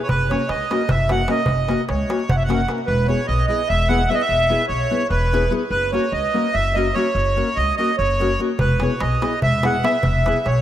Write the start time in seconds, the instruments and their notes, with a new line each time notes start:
0.03 accordion C#5
0.09 upright bass F#1, accordion B4, darbuka dum
0.30 nylon-string guitar A#3 C#4 F#4 A#4, accordion C#5, darbuka tek
0.48 upright bass C#2, accordion D#5, darbuka tek
0.70 nylon-string guitar A#3 C#4 F#4 A#4, darbuka tek
0.81 darbuka tek
0.89 upright bass F#1, accordion E5, darbuka dum
1.09 nylon-string guitar A#3 C#4 F#4 A#4, accordion F#5, darbuka tek
1.28 nylon-string guitar A#3 C#4 F#4 A#4, accordion D#5, darbuka tek
1.46 upright bass F#1, darbuka dum
1.58 darbuka tek
1.69 nylon-string guitar A#3 C#4 F#4 A#4, darbuka tek
1.89 upright bass C#2, accordion C#5, darbuka tek
1.99 darbuka tek
2.09 nylon-string guitar A#3 C#4 F#4 A#4, darbuka tek
2.20 darbuka tek
2.29 upright bass F#1, accordion F#5, darbuka dum
2.36 accordion E5
2.44 accordion F#5
2.48 nylon-string guitar A#3 C#4 F#4 A#4, darbuka tek
2.68 nylon-string guitar A#3 C#4 F#4 A#4, darbuka tek
2.78 darbuka tek
2.87 upright bass E1, accordion B4
3.08 nylon-string guitar B3 E4 G#4 B4, accordion C#5
3.27 upright bass B1, accordion D#5
3.47 nylon-string guitar B3 E4 G#4 B4, accordion D#5
3.69 upright bass E1, accordion E5
3.88 nylon-string guitar B3 E4 G#4 B4, accordion F#5
4.09 nylon-string guitar B3 E4 G#4 B4, accordion E5
4.14 accordion D#5
4.21 accordion E5
4.29 upright bass E1
4.49 nylon-string guitar B3 E4 G#4 B4
4.68 upright bass B1, accordion C#5
4.91 nylon-string guitar B3 E4 G#4 B4
5.10 upright bass E1, accordion B4
5.33 nylon-string guitar B3 E4 G#4 B4
5.50 nylon-string guitar B3 E4 G#4 B4
5.70 upright bass F#1, accordion B4
5.92 nylon-string guitar A#3 C#4 F#4 A#4, accordion C#5
6.12 upright bass C#2, accordion D#5
6.34 nylon-string guitar A#3 C#4 F#4 A#4
6.53 upright bass F#1, accordion E5
6.74 nylon-string guitar A#3 C#4 F#4 A#4, accordion D#5
6.94 nylon-string guitar A#3 C#4 F#4 A#4, accordion C#5
7.15 upright bass F#1
7.36 nylon-string guitar A#3 C#4 F#4 A#4
7.56 upright bass C#2, accordion D#5
7.77 nylon-string guitar A#3 C#4 F#4 A#4, accordion D#5
7.98 upright bass F#1, accordion C#5
8.19 nylon-string guitar A#3 C#4 F#4 A#4
8.39 nylon-string guitar A#3 C#4 F#4 A#4
8.59 upright bass E1, accordion B4, darbuka dum
8.70 darbuka tek
8.80 nylon-string guitar B3 E4 G#4 B4, accordion C#5, darbuka tek
9.00 upright bass B1, accordion D#5, darbuka tek
9.21 nylon-string guitar B3 E4 G#4 B4, darbuka tek
9.33 darbuka tek
9.42 upright bass E1, accordion E5, darbuka dum
9.63 nylon-string guitar B3 E4 G#4 B4, accordion F#5, darbuka tek
9.83 nylon-string guitar B3 E4 G#4 B4, accordion E5, darbuka tek
10.03 upright bass E1, darbuka dum
10.15 darbuka tek
10.26 nylon-string guitar B3 E4 G#4 B4, darbuka tek
10.46 upright bass B1, accordion C#5, darbuka tek